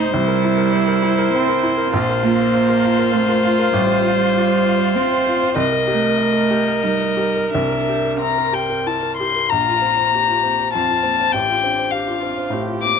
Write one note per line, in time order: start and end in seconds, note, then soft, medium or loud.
0.00 0.13 C2 medium
0.00 0.12 A3 loud
0.00 0.13 C4 medium
0.00 0.13 D#4 medium
0.00 0.13 C5 medium
0.00 1.88 C5 medium
0.11 1.90 C2 medium
0.11 1.32 G3 loud
0.11 1.92 E4 loud
0.28 0.50 A#4 medium
0.44 0.66 E4 medium
0.57 0.80 A#4 medium
0.73 0.96 C5 medium
0.88 1.12 A#4 medium
1.02 1.27 E4 medium
1.19 1.42 A#4 medium
1.33 1.91 C4 loud
1.33 1.57 C4 medium
1.49 1.72 A#4 medium
1.63 1.86 E4 medium
1.78 1.92 A#4 medium
1.93 3.70 A#1 medium
1.93 5.54 F4 medium
1.93 5.55 C5 loud
2.09 2.32 A#4 medium
2.22 3.15 A#3 loud
2.22 2.48 F4 medium
2.41 2.63 A#4 medium
2.54 2.78 C5 medium
2.69 2.93 A#4 medium
2.83 3.07 F4 medium
2.99 3.23 A#4 medium
3.13 3.73 A3 loud
3.13 3.37 C4 medium
3.29 3.53 A#4 medium
3.44 3.67 F4 medium
3.59 3.74 A#4 medium
3.73 5.54 A1 medium
3.73 4.97 G3 loud
3.86 4.11 C5 medium
4.02 4.27 F4 medium
4.17 4.42 C5 medium
4.32 4.58 F4 medium
4.48 4.74 C5 medium
4.64 4.90 F4 medium
4.79 5.05 C5 medium
4.96 5.21 C4 medium
4.96 5.57 C4 loud
5.12 5.36 C5 medium
5.26 5.51 F4 medium
5.42 5.57 C5 medium
5.56 7.48 C2 medium
5.56 9.25 A#4 medium
5.56 7.49 D#5 medium
5.72 5.97 A#4 medium
5.88 6.83 A3 loud
5.88 6.12 G4 medium
6.02 6.27 A#4 medium
6.18 6.43 D#5 medium
6.33 6.59 A#4 medium
6.51 6.76 G4 medium
6.66 6.92 A#4 medium
6.82 7.52 G3 medium
6.82 7.10 D#4 medium
7.01 7.29 A#4 medium
7.17 7.45 G4 medium
7.37 7.53 A#4 medium
7.52 9.47 C2 medium
7.52 8.19 D4 medium
7.52 8.12 E5 medium
7.71 7.97 A#4 soft
7.89 8.14 G4 soft
8.05 8.30 A#4 soft
8.18 9.17 C4 medium
8.18 8.47 E5 medium
8.18 8.55 A#5 medium
8.38 8.63 A#4 soft
8.52 8.78 G4 medium
8.52 8.88 G5 medium
8.70 8.95 A#4 medium
8.86 9.12 E4 medium
8.86 9.16 A5 medium
9.03 9.28 A#4 soft
9.17 9.45 G4 medium
9.17 9.51 C6 medium
9.36 9.51 A#4 soft
9.49 11.30 A#1 medium
9.49 9.83 D4 medium
9.49 10.15 F4 medium
9.49 10.72 A#5 medium
9.68 9.92 F4 soft
9.81 10.06 C4 soft
9.81 10.14 C4 medium
9.97 10.45 C5 soft
10.13 10.43 A#3 medium
10.13 10.73 G4 medium
10.28 10.52 F4 soft
10.43 10.75 A#3 medium
10.43 10.67 C4 soft
10.59 10.83 C5 soft
10.73 10.98 F2 soft
10.73 11.05 C4 medium
10.73 11.35 F4 medium
10.73 11.33 A5 medium
10.88 11.12 F4 soft
11.03 11.34 A#3 medium
11.03 11.27 C4 soft
11.20 11.34 C5 medium
11.32 13.00 A1 medium
11.32 11.62 C4 medium
11.32 11.92 G4 medium
11.32 11.92 G5 medium
11.48 11.71 F4 soft
11.63 11.86 C4 soft
11.63 12.54 D4 medium
11.78 12.26 C5 soft
11.90 12.22 G4 medium
11.90 12.52 F5 medium
12.07 12.31 F4 soft
12.22 12.47 C4 soft
12.22 12.55 F4 medium
12.37 12.62 C5 soft
12.50 12.76 A2 medium
12.50 12.84 C4 medium
12.50 13.00 G4 medium
12.67 12.92 F4 soft
12.82 13.00 A#3 medium
12.82 13.00 C4 soft
12.82 13.00 D6 medium
12.96 13.00 C5 soft